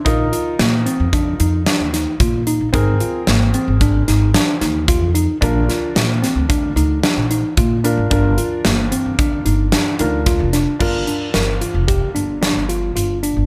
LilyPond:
<<
  \new Staff \with { instrumentName = "Grand piano" } { \time 5/4 \key g \phrygian \tempo 4 = 112 <ees' f' bes'>1~ <ees' f' bes'>4 | <c' aes' bes'>1~ <c' aes' bes'>4 | <d' f' bes'>1~ <d' f' bes'>8 <d' f' bes'>8 | <d' f' bes'>2.~ <d' f' bes'>8 <d' f' bes'>4. |
<d' f' bes'>1~ <d' f' bes'>4 | }
  \new Staff \with { instrumentName = "Tine electric piano" } { \time 5/4 \key g \phrygian ees'8 f'8 bes8 c'8 d'8 ees'8 d'8 ees'8 f'8 ees'8 | ees'8 f'8 bes8 c'8 d'8 ees'8 d'8 ees'8 f'8 ees'8 | d'8 f'8 bes8 c'8 d'8 ees'8 d'8 ees'8 f'8 d'8 | d'8 f'8 bes8 c'8 d'8 ees'8 d'8 ees'8 f'8 d'8 |
f'8 d'8 bes'8 f'8 g'8 d'8 d'8 f'8 f'8 d'8 | }
  \new Staff \with { instrumentName = "Upright bass" } { \clef bass \time 5/4 \key g \phrygian bes,,8 r8 bes,8 r16 f,8. f,8 r16 ees,8 r16 bes,8. bes,,16 | aes,,8 r8 aes,,8 r16 aes,,8. aes,,8 r8 ees,8. f,8 r16 | bes,,8 r8 bes,8 r16 d,8. d,8 r16 bes,,8 r16 bes,8. aes,,16 | g,,8 r8 g,,8 r16 g,,8. g,,8 r8 d,8. f,,8 r16 |
g,,8 r8 g,,8 r16 f,,8 r16 g,,8. g,,8. g,,8. g,,16 | }
  \new DrumStaff \with { instrumentName = "Drums" } \drummode { \time 5/4 <hh bd>8 hh8 <hh sn>8 hh8 <hh bd>8 hh8 <hh sn>8 <hh sn>8 <hh bd>8 hh8 | <hh bd>8 hh8 <hh sn>8 hh8 <hh bd>8 <hh sn>8 <hh sn>8 <hh sn>8 <hh bd>8 hh8 | <hh bd>8 <hh sn>8 <hh sn>8 <hh sn>8 <hh bd>8 hh8 <hh sn>8 hh8 <hh bd>8 hh8 | <hh bd>8 hh8 <hh sn>8 hh8 <hh bd>8 hh8 <hh sn>8 hh8 <hh bd sn>8 <hh sn>8 |
<cymc bd>8 hh8 <hh sn>8 hh8 <hh bd>8 hh8 <hh sn>8 hh8 hh8 hh8 | }
>>